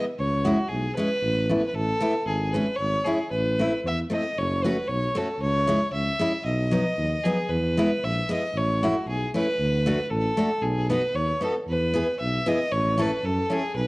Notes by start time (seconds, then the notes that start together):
0.19 C#2 C#5
0.45 G#3 C#4 E4 F#4
0.68 B1 G#4
0.95 G#3 C#4 E4 B4
1.22 A1
1.49 A3 B3 E4
1.67 B4
1.74 A1 A4
2.00 A3 B3 E4
2.26 G#1 G#4
2.53 G#3 C#4 E4 B4
2.76 G#1 C#5
3.05 G#3 C#4 E4 G#4
3.31 A1 B4
3.59 A3 C4 E4
3.84 E2 E5
4.10 A3 C4 E4 D#5
4.37 F#1 C#5
4.64 A3 C#4 F#4 B4
4.88 B1 C#5
5.15 A3 C#4 F#4 A4
5.40 C#2 C#5
5.67 G#3 C#4 E4
5.92 C#2 E5
6.19 G#3 C#4 E4
6.45 B1 D#5
6.71 F#3 B3 D#4
6.97 D#2
7.24 F#3 B3 D#4 G#4
7.49 E2 B4
7.77 G#3 B3 E4
8.03 A#1 E5
8.29 G#3 B3 E4 D#5
8.55 A1 C#5
8.83 A3 C#4 E4 F#4
9.06 B1 G#4
9.34 A3 C#4 E4 B4
9.59 D2
9.86 A3 D4 F#4
10.10 A1 A4
10.37 A3 D4 F#4
10.62 B1 G#4
10.89 B3 D#4 F#4 B4
11.14 D#2 C#5
11.41 B3 D#4 F#4 A4
11.68 E2 B4
11.94 B3 E4 G#4
12.19 B1 E5
12.46 B3 E4 G#4 D#5
12.71 A1 C#5
12.98 C#4 E4 A4
13.02 B4
13.23 F#2 A4
13.50 C#4 E4 G#4 A4
13.75 B1 B4